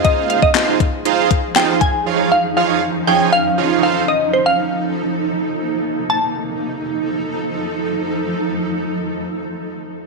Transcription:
<<
  \new Staff \with { instrumentName = "Synth pluck" } { \time 4/4 \key des \lydian \tempo 4 = 119 ees''8 f''16 ees''2 r16 g''8 aes''8~ | aes''8 f''8 f''4 g''8 f''4 f''8 | ees''8 c''16 f''2 r4 r16 | a''1~ |
a''1 | }
  \new Staff \with { instrumentName = "Analog polysynth" } { \time 4/4 \key des \lydian <ees' f' aes' c'' f''>8 r8 <ees' f' aes' c'' f''>8 r8 <ees' f' aes' c'' f''>8 r8 <ees' f' aes' c'' f''>8 r8 | <f ees' f' aes' des'' f''>8 r8 <f ees' f' aes' des'' f''>8 r8 <f ees' f' aes' des'' aes''>8 r8 <f ees' f' aes' des'' f''>8 <ees' f' a' c'' f''>8 | r1 | r1 |
r1 | }
  \new Staff \with { instrumentName = "Ambient pad" } { \time 4/4 \key des \lydian << { <ees' aes'>1 | des'2.~ des'8 a'8~ | a'2 bes2 | <f ees' a'>1~ |
<f ees' a'>1 | } \\ { f1~ | f1~ | f2 c2 | r1 |
r1 | } >> }
  \new DrumStaff \with { instrumentName = "Drums" } \drummode { \time 4/4 <hh bd>8 hh16 bd16 <hc hh sn>8 <hh bd>8 hh8 <hh bd>8 <hc hh sn>8 <hh bd>8 | r4 r4 r4 r4 | r4 r4 r4 r4 | r4 r4 r4 r4 |
r4 r4 r4 r4 | }
>>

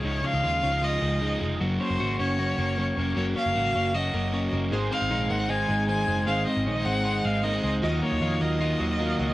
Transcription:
<<
  \new Staff \with { instrumentName = "Violin" } { \time 4/4 \key aes \mixolydian \tempo 4 = 154 des''8 f''4. ees''4. r8 | r8 c''4 des''2~ des''8 | des''8 f''4. ees''4. r8 | r8 f''4 ges''8 aes''4 aes''4 |
f''8 ees''4 ges''4 f''8 ees''8. r16 | r8 des''4 ees''2~ ees''8 | }
  \new Staff \with { instrumentName = "Synth keys" } { \time 4/4 \key aes \mixolydian r1 | r1 | r1 | <ees' aes' c''>8 <ees' aes' c''>8 <ees' aes' c''>8 <ees' aes' c''>8 <ees' aes' c''>8 <ees' aes' c''>8 <ees' aes' c''>8 <ees' aes' c''>8 |
<ees' aes' c''>8 <ees' aes' c''>8 <ees' aes' c''>8 <ees' aes' c''>8 <ees' aes' c''>8 <ees' aes' c''>8 <ees' aes' c''>8 <ees' aes' c''>8 | <f' ges' ees''>8 <f' ges' ees''>8 <f' ges' ees''>8 <f' ges' ees''>8 <f' ges' ees''>8 <f' ges' ees''>8 <f' ges' f''>8 <f' ges' ees''>8 | }
  \new Staff \with { instrumentName = "Clean electric guitar" } { \time 4/4 \key aes \mixolydian <des aes ees' f'>8 des'16 ees'16 f'8 des'16 ees'16 f'8 aes8 ees'8 aes8 | ges8 des'8 ges'8 des'8 ges'8 bes8 des'8 bes8 | ges8 des'8 ges'8 des'8 ges'8 bes8 des'8 bes8 | aes,8 c'8 ees'8 bes16 c'16 ees'8 aes8 c'8 aes8 |
aes,8 c'8 des'16 ees'16 c'8 ees'8 aes8 bes16 c'16 aes8 | ees8 bes8 f'8 bes8 f'8 ges8 bes8 ges8 | }
  \new Staff \with { instrumentName = "Overdriven electric guitar" } { \clef bass \time 4/4 \key aes \mixolydian <des f aes ees'>8 <f aes ees'>8 <des f aes ees'>8 <f aes ees'>8 <des f aes ees'>8 <f aes ees'>8 <des f aes ees'>8 <f aes ees'>8 | <ges, des ges bes des'>8 <ges bes des'>8 <ges, des ges bes des'>8 <ges bes des'>8 <des ges bes des'>8 <ges bes des'>8 <ges, des ges bes des'>8 <ges bes des'>8 | <ges, des ges bes des'>8 <ges bes des'>8 <ges, des ges bes des'>8 <ges bes des'>8 <des ges bes des'>8 <ges bes des'>8 <ges, des ges bes des'>8 <ges bes des'>8 | <aes, ees aes c' ees'>8 <aes c' ees'>8 <aes, ees aes c' ees'>8 <aes c' ees'>8 <ees aes c' ees'>8 <aes c' ees'>8 <aes, ees aes c' ees'>8 <aes c' ees'>8 |
<aes, ees aes c' ees'>8 <aes c' ees'>8 <aes, ees aes c' ees'>8 <aes c' ees'>8 <ees aes c' ees'>8 <aes c' ees'>8 <aes, ees aes c' ees'>8 <aes c' ees'>8 | <ees ges bes f'>8 <ges bes f'>8 <ees ges bes f'>8 <ges bes f'>8 <ees ges bes f'>8 <ges bes f'>8 <ees ges bes f'>8 <ges bes f'>8 | }
  \new Staff \with { instrumentName = "Picked electric bass" } { \clef bass \time 4/4 \key aes \mixolydian des,8 r16 des,16 ees,8 des,4 des,4 f,,8 | ges,,8 r16 ges,,16 aes,,8 ges,,4 ges,,4 f,,8 | ges,,8 r16 ges,,16 aes,,8 ges,,4 ges,,4 ges,,8 | aes,,8 r16 aes,,16 bes,,8 aes,,4 aes,,4 ges,,8 |
aes,,8 r16 aes,,16 bes,,8 aes,,4 aes,,4 des,8 | ees,8 r16 ees,16 f,8 ees,4 ees,4 des,8 | }
>>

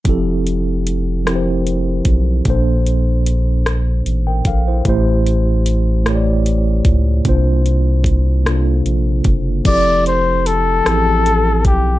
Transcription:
<<
  \new Staff \with { instrumentName = "Flugelhorn" } { \time 6/8 \key f \major \tempo 4. = 50 r2. | r2. | r2. | r2. |
d''8 c''8 a'4. g'8 | }
  \new Staff \with { instrumentName = "Tine electric piano" } { \time 6/8 \key f \major << { r2. | r2 r16 <bes' g''>16 <a' f''>16 <e' c''>16~ | <e' c''>16 r2 r8. | r2. |
r2. | } \\ { <f c' e' g' a'>4. <f c' e' g' bes' c''>4. | <bes, bes d' a' c''>4. r4. | <a, a e' g' bis'>4. <a, a e' g' cis'' d''>4. | <c bes d' f' c''>4. <c bes d' f' a'>4. |
<f c' e' g' a'>4. <f c' e' g' aes' a'>4. | } >> }
  \new Staff \with { instrumentName = "Analog synth bass" } { \clef bass \time 6/8 \key f \major f,,2~ f,,8 b,,8 | bes,,2 a,,8 bes,,8 | a,,2~ a,,8 cis,8 | c,2 bes,,8 ges,,8 |
f,,4. a,,4 b,,8 | }
  \new DrumStaff \with { instrumentName = "Drums" } \drummode { \time 6/8 <hh bd>8 hh8 hh8 <hh ss>8 hh8 <hh bd>8 | <hh bd>8 hh8 hh8 <hh ss>8 hh8 <hh bd>8 | <hh bd>8 hh8 hh8 <hh ss>8 hh8 <hh bd>8 | <hh bd>8 hh8 <hh bd>8 <hh ss>8 hh8 <hh bd>8 |
<cymc hh bd>8 hh8 hh8 <hh ss>8 hh8 <hh bd>8 | }
>>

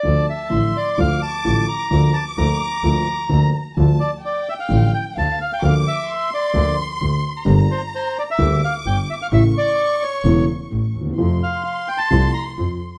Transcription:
<<
  \new Staff \with { instrumentName = "Violin section" } { \time 4/4 \key d \minor \tempo 4 = 129 a''4 c'''4 d'''2 | d'''2. bes''4 | a''4 g''2 f''4 | d'''4 c'''2. |
bes''2 d'''2 | cis'''2.~ cis'''8 r8 | c'''1 | }
  \new Staff \with { instrumentName = "Bandoneon" } { \time 4/4 \key d \minor d''8 e''4 d''8 f''8 a''4 bes''8~ | bes''8 a''8 bes''2~ bes''8 r8 | r8 d''8 d''8 e''16 f''8. g''8 a''8 f''16 g''16 | f''8 e''4 d''4 r4. |
r8 c''8 c''8 d''16 e''8. f''8 g''8 e''16 f''16 | e''8 d''4 cis''4 r4. | r8 f''8 f''8 g''16 a''8. bes''8 r4 | }
  \new Staff \with { instrumentName = "Grand piano" } { \clef bass \time 4/4 \key d \minor <d, d f a f'>8 r8 <a,, a, d f a f'>8 r8 <d, d f a f'>8 r8 <a,, a, d f a f'>8 r8 | <d, d f bes f'>8 r8 <d, d f bes f'>8 r8 <d, d f bes f'>8 r8 <d, d f bes f'>8 r8 | <d, d f a f'>8 r4. <a,, a, d f a f'>8 r8 <d, d>8 r8 | <d, d f bes f'>8 r4. <d, d f bes f'>8 r8 <d, d>8 r8 |
<g,, g, d g bes g'>8 r4. <d, d g bes g'>8 r8 <g,, g,>8 r8 | <a,, a, cis e a e'>8 r4. <e,, e, cis e a e'>8 r8 <a,, a,>8 r32 d,32 ees,32 e,32 | <f, c f a f'>8 r4. <c, c f a f'>8 r8 <f, f>8 r8 | }
  \new Staff \with { instrumentName = "Double bass" } { \clef bass \time 4/4 \key d \minor d,8 r8 a,,8 r8 d,8 r8 a,,8 r8 | d,8 r8 d,8 r8 d,8 r8 d,8 r8 | d,8 r4. a,,8 r8 d,8 r8 | d,8 r4. d,8 r8 d,8 r8 |
g,,8 r4. d,8 r8 g,,8 r8 | a,,8 r4. e,,8 r8 a,,8 ees,8 | f,8 r4. c,8 r8 f,8 r8 | }
>>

